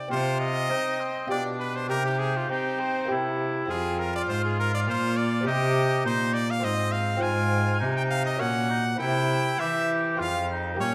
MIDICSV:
0, 0, Header, 1, 5, 480
1, 0, Start_track
1, 0, Key_signature, -3, "minor"
1, 0, Tempo, 600601
1, 83, Time_signature, 3, 2, 24, 8
1, 2483, Tempo, 587084
1, 5840, Key_signature, -4, "minor"
1, 6323, Tempo, 598802
1, 8842, End_track
2, 0, Start_track
2, 0, Title_t, "Trumpet"
2, 0, Program_c, 0, 56
2, 0, Note_on_c, 0, 74, 92
2, 84, Note_off_c, 0, 74, 0
2, 91, Note_on_c, 0, 72, 118
2, 318, Note_off_c, 0, 72, 0
2, 323, Note_on_c, 0, 75, 123
2, 1027, Note_off_c, 0, 75, 0
2, 1043, Note_on_c, 0, 74, 114
2, 1150, Note_off_c, 0, 74, 0
2, 1279, Note_on_c, 0, 71, 107
2, 1408, Note_on_c, 0, 72, 109
2, 1420, Note_off_c, 0, 71, 0
2, 1512, Note_off_c, 0, 72, 0
2, 1516, Note_on_c, 0, 70, 122
2, 1636, Note_off_c, 0, 70, 0
2, 1643, Note_on_c, 0, 67, 106
2, 1752, Note_on_c, 0, 68, 113
2, 1764, Note_off_c, 0, 67, 0
2, 1893, Note_on_c, 0, 65, 101
2, 1905, Note_off_c, 0, 68, 0
2, 2000, Note_on_c, 0, 67, 115
2, 2012, Note_off_c, 0, 65, 0
2, 2240, Note_on_c, 0, 72, 111
2, 2252, Note_off_c, 0, 67, 0
2, 2481, Note_off_c, 0, 72, 0
2, 2968, Note_on_c, 0, 68, 121
2, 3209, Note_on_c, 0, 70, 108
2, 3221, Note_off_c, 0, 68, 0
2, 3329, Note_off_c, 0, 70, 0
2, 3343, Note_on_c, 0, 74, 117
2, 3394, Note_off_c, 0, 74, 0
2, 3453, Note_on_c, 0, 72, 124
2, 3568, Note_off_c, 0, 72, 0
2, 3581, Note_on_c, 0, 68, 102
2, 3692, Note_off_c, 0, 68, 0
2, 3703, Note_on_c, 0, 70, 117
2, 3813, Note_off_c, 0, 70, 0
2, 3826, Note_on_c, 0, 74, 118
2, 3876, Note_off_c, 0, 74, 0
2, 3947, Note_on_c, 0, 72, 125
2, 4171, Note_on_c, 0, 74, 118
2, 4183, Note_off_c, 0, 72, 0
2, 4408, Note_off_c, 0, 74, 0
2, 4419, Note_on_c, 0, 75, 127
2, 4882, Note_off_c, 0, 75, 0
2, 4900, Note_on_c, 0, 72, 127
2, 5128, Note_on_c, 0, 74, 127
2, 5140, Note_off_c, 0, 72, 0
2, 5263, Note_on_c, 0, 77, 123
2, 5276, Note_off_c, 0, 74, 0
2, 5377, Note_on_c, 0, 75, 127
2, 5389, Note_off_c, 0, 77, 0
2, 5604, Note_on_c, 0, 77, 115
2, 5616, Note_off_c, 0, 75, 0
2, 5845, Note_on_c, 0, 80, 127
2, 5857, Note_off_c, 0, 77, 0
2, 6444, Note_off_c, 0, 80, 0
2, 6452, Note_on_c, 0, 79, 119
2, 6503, Note_off_c, 0, 79, 0
2, 6567, Note_on_c, 0, 77, 127
2, 6682, Note_off_c, 0, 77, 0
2, 6690, Note_on_c, 0, 75, 118
2, 6806, Note_on_c, 0, 78, 127
2, 6818, Note_off_c, 0, 75, 0
2, 7275, Note_off_c, 0, 78, 0
2, 7280, Note_on_c, 0, 79, 127
2, 7760, Note_on_c, 0, 76, 127
2, 7772, Note_off_c, 0, 79, 0
2, 8073, Note_off_c, 0, 76, 0
2, 8251, Note_on_c, 0, 77, 127
2, 8470, Note_off_c, 0, 77, 0
2, 8728, Note_on_c, 0, 73, 116
2, 8835, Note_off_c, 0, 73, 0
2, 8842, End_track
3, 0, Start_track
3, 0, Title_t, "Oboe"
3, 0, Program_c, 1, 68
3, 93, Note_on_c, 1, 65, 102
3, 560, Note_on_c, 1, 63, 85
3, 572, Note_off_c, 1, 65, 0
3, 797, Note_on_c, 1, 60, 85
3, 809, Note_off_c, 1, 63, 0
3, 1048, Note_on_c, 1, 62, 88
3, 1060, Note_off_c, 1, 60, 0
3, 1508, Note_off_c, 1, 62, 0
3, 1513, Note_on_c, 1, 67, 104
3, 1989, Note_off_c, 1, 67, 0
3, 1997, Note_on_c, 1, 63, 100
3, 2471, Note_off_c, 1, 63, 0
3, 2490, Note_on_c, 1, 64, 96
3, 2970, Note_on_c, 1, 65, 117
3, 2982, Note_off_c, 1, 64, 0
3, 4399, Note_off_c, 1, 65, 0
3, 4403, Note_on_c, 1, 67, 116
3, 4874, Note_off_c, 1, 67, 0
3, 4883, Note_on_c, 1, 63, 107
3, 5187, Note_off_c, 1, 63, 0
3, 5355, Note_on_c, 1, 60, 97
3, 5804, Note_off_c, 1, 60, 0
3, 5839, Note_on_c, 1, 65, 114
3, 6312, Note_off_c, 1, 65, 0
3, 6319, Note_on_c, 1, 63, 110
3, 6790, Note_off_c, 1, 63, 0
3, 6794, Note_on_c, 1, 61, 101
3, 7032, Note_off_c, 1, 61, 0
3, 7041, Note_on_c, 1, 63, 94
3, 7148, Note_off_c, 1, 63, 0
3, 7283, Note_on_c, 1, 64, 109
3, 7769, Note_on_c, 1, 67, 116
3, 7781, Note_off_c, 1, 64, 0
3, 8238, Note_on_c, 1, 65, 101
3, 8250, Note_off_c, 1, 67, 0
3, 8480, Note_off_c, 1, 65, 0
3, 8493, Note_on_c, 1, 63, 84
3, 8720, Note_off_c, 1, 63, 0
3, 8725, Note_on_c, 1, 61, 98
3, 8842, Note_off_c, 1, 61, 0
3, 8842, End_track
4, 0, Start_track
4, 0, Title_t, "Lute"
4, 0, Program_c, 2, 24
4, 64, Note_on_c, 2, 60, 65
4, 77, Note_on_c, 2, 67, 63
4, 89, Note_on_c, 2, 48, 67
4, 533, Note_off_c, 2, 48, 0
4, 558, Note_off_c, 2, 60, 0
4, 568, Note_on_c, 2, 60, 70
4, 1009, Note_off_c, 2, 67, 0
4, 1012, Note_off_c, 2, 60, 0
4, 1017, Note_on_c, 2, 65, 67
4, 1028, Note_on_c, 2, 67, 67
4, 1039, Note_on_c, 2, 47, 73
4, 1487, Note_off_c, 2, 47, 0
4, 1490, Note_off_c, 2, 65, 0
4, 1493, Note_on_c, 2, 63, 62
4, 1496, Note_off_c, 2, 67, 0
4, 1505, Note_on_c, 2, 67, 68
4, 1515, Note_on_c, 2, 48, 70
4, 1968, Note_off_c, 2, 48, 0
4, 1991, Note_on_c, 2, 60, 72
4, 2435, Note_off_c, 2, 60, 0
4, 2439, Note_on_c, 2, 58, 68
4, 2441, Note_off_c, 2, 63, 0
4, 2447, Note_off_c, 2, 67, 0
4, 2452, Note_on_c, 2, 64, 67
4, 2462, Note_on_c, 2, 67, 72
4, 2478, Note_on_c, 2, 48, 74
4, 2927, Note_off_c, 2, 58, 0
4, 2931, Note_on_c, 2, 60, 68
4, 2932, Note_off_c, 2, 48, 0
4, 2937, Note_off_c, 2, 64, 0
4, 2942, Note_off_c, 2, 67, 0
4, 2946, Note_on_c, 2, 65, 67
4, 2956, Note_on_c, 2, 68, 65
4, 2967, Note_on_c, 2, 41, 72
4, 3416, Note_off_c, 2, 41, 0
4, 3453, Note_on_c, 2, 44, 73
4, 3880, Note_off_c, 2, 60, 0
4, 3897, Note_off_c, 2, 44, 0
4, 3923, Note_on_c, 2, 46, 81
4, 4362, Note_off_c, 2, 65, 0
4, 4363, Note_on_c, 2, 60, 68
4, 4367, Note_off_c, 2, 68, 0
4, 4371, Note_off_c, 2, 46, 0
4, 4380, Note_on_c, 2, 67, 67
4, 4391, Note_on_c, 2, 72, 74
4, 4403, Note_on_c, 2, 48, 82
4, 4850, Note_off_c, 2, 48, 0
4, 4880, Note_on_c, 2, 46, 78
4, 5311, Note_off_c, 2, 60, 0
4, 5320, Note_off_c, 2, 67, 0
4, 5326, Note_off_c, 2, 72, 0
4, 5327, Note_off_c, 2, 46, 0
4, 5333, Note_on_c, 2, 60, 74
4, 5346, Note_on_c, 2, 65, 73
4, 5358, Note_on_c, 2, 72, 76
4, 5372, Note_on_c, 2, 44, 84
4, 5793, Note_off_c, 2, 60, 0
4, 5802, Note_on_c, 2, 60, 72
4, 5805, Note_off_c, 2, 65, 0
4, 5813, Note_off_c, 2, 44, 0
4, 5815, Note_on_c, 2, 65, 70
4, 5818, Note_off_c, 2, 72, 0
4, 5828, Note_on_c, 2, 72, 74
4, 5837, Note_on_c, 2, 44, 82
4, 6289, Note_off_c, 2, 44, 0
4, 6329, Note_on_c, 2, 48, 79
4, 6753, Note_off_c, 2, 60, 0
4, 6760, Note_off_c, 2, 65, 0
4, 6766, Note_off_c, 2, 72, 0
4, 6769, Note_on_c, 2, 61, 72
4, 6772, Note_off_c, 2, 48, 0
4, 6780, Note_on_c, 2, 66, 70
4, 6793, Note_on_c, 2, 70, 74
4, 6807, Note_on_c, 2, 46, 79
4, 7244, Note_off_c, 2, 61, 0
4, 7247, Note_on_c, 2, 60, 70
4, 7250, Note_off_c, 2, 46, 0
4, 7254, Note_off_c, 2, 66, 0
4, 7258, Note_on_c, 2, 64, 73
4, 7260, Note_off_c, 2, 70, 0
4, 7270, Note_on_c, 2, 70, 69
4, 7280, Note_on_c, 2, 48, 82
4, 7727, Note_off_c, 2, 48, 0
4, 7759, Note_on_c, 2, 52, 76
4, 8196, Note_off_c, 2, 60, 0
4, 8202, Note_off_c, 2, 64, 0
4, 8205, Note_on_c, 2, 60, 65
4, 8208, Note_off_c, 2, 70, 0
4, 8209, Note_off_c, 2, 52, 0
4, 8219, Note_on_c, 2, 65, 71
4, 8230, Note_on_c, 2, 68, 68
4, 8241, Note_on_c, 2, 41, 80
4, 8679, Note_off_c, 2, 60, 0
4, 8682, Note_on_c, 2, 58, 64
4, 8689, Note_off_c, 2, 41, 0
4, 8690, Note_off_c, 2, 68, 0
4, 8694, Note_on_c, 2, 67, 69
4, 8696, Note_off_c, 2, 65, 0
4, 8717, Note_on_c, 2, 46, 67
4, 8842, Note_off_c, 2, 46, 0
4, 8842, Note_off_c, 2, 58, 0
4, 8842, Note_off_c, 2, 67, 0
4, 8842, End_track
5, 0, Start_track
5, 0, Title_t, "Cello"
5, 0, Program_c, 3, 42
5, 78, Note_on_c, 3, 48, 100
5, 553, Note_on_c, 3, 60, 84
5, 565, Note_off_c, 3, 48, 0
5, 1031, Note_off_c, 3, 60, 0
5, 1035, Note_on_c, 3, 47, 90
5, 1512, Note_on_c, 3, 48, 98
5, 1524, Note_off_c, 3, 47, 0
5, 1999, Note_off_c, 3, 48, 0
5, 2004, Note_on_c, 3, 60, 86
5, 2487, Note_on_c, 3, 48, 93
5, 2499, Note_off_c, 3, 60, 0
5, 2957, Note_off_c, 3, 48, 0
5, 2962, Note_on_c, 3, 41, 98
5, 3436, Note_off_c, 3, 41, 0
5, 3445, Note_on_c, 3, 44, 92
5, 3925, Note_on_c, 3, 46, 101
5, 3937, Note_off_c, 3, 44, 0
5, 4409, Note_on_c, 3, 48, 113
5, 4421, Note_off_c, 3, 46, 0
5, 4889, Note_on_c, 3, 46, 101
5, 4901, Note_off_c, 3, 48, 0
5, 5366, Note_on_c, 3, 44, 94
5, 5378, Note_off_c, 3, 46, 0
5, 5839, Note_off_c, 3, 44, 0
5, 5844, Note_on_c, 3, 44, 117
5, 6329, Note_on_c, 3, 48, 101
5, 6341, Note_off_c, 3, 44, 0
5, 6813, Note_on_c, 3, 46, 95
5, 6825, Note_off_c, 3, 48, 0
5, 7282, Note_off_c, 3, 46, 0
5, 7287, Note_on_c, 3, 48, 107
5, 7753, Note_off_c, 3, 48, 0
5, 7767, Note_on_c, 3, 52, 88
5, 8248, Note_on_c, 3, 41, 98
5, 8260, Note_off_c, 3, 52, 0
5, 8729, Note_on_c, 3, 46, 99
5, 8741, Note_off_c, 3, 41, 0
5, 8842, Note_off_c, 3, 46, 0
5, 8842, End_track
0, 0, End_of_file